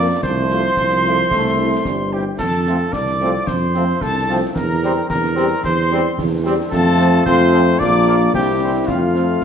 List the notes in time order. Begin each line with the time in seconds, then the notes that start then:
Already playing: F2 F3 A#3 D5 D6
0.23 C2 F3 A3 C5 C6, concert bass drum, snare
0.50 F3 A3 F4, snare
0.76 C2 F3, concert bass drum, snare
0.90 snare
1.04 F3 A3 F4, snare
1.30 C2 A3, concert bass drum, snare
1.59 G3 C4 E4
1.85 G1 G3, concert bass drum, snare
2.12 G3 C4 E4 G4 G5
2.39 F2 A4 A5, concert bass drum, snare, crash
2.66 F3 A3 C4 F4, snare
2.93 C2 D5 D6, concert bass drum, snare
3.07 snare
3.20 F3 A3 C4 F4, snare
3.47 F2 C5 C6, concert bass drum, snare
3.73 F3 A3 C4 F4, snare
4.01 C2 A4 A5, concert bass drum, snare
4.28 F3 A3 C4 F4
4.55 E2 A#4 A#5, concert bass drum, snare
4.82 G3 C4 G4, snare
5.10 E2 A#4 A#5, concert bass drum, snare
5.24 snare
5.35 G3 C4 G4, snare
5.63 E2 C5 C6, concert bass drum, snare
5.91 G3 C4 G4, snare
6.18 E2, concert bass drum, snare
6.43 G3 C4 G4
6.71 F2 A3 C4 F4 A4 A5, concert bass drum, snare, crash
6.97 F3 C4, snare
7.26 F2 A3 C4 F4 C5 C6, concert bass drum, snare
7.40 snare
7.51 F3 C4, snare
7.79 A#1 A#3 D4 F4 D5 D6, concert bass drum, snare
8.06 F3 A#3, snare
8.34 C2 G3 C4 E4 G4 G5, concert bass drum, snare
8.62 E3 C4
8.87 F2 A3 C4 F4 F5, concert bass drum, snare
9.14 A3 C4, snare
9.41 A3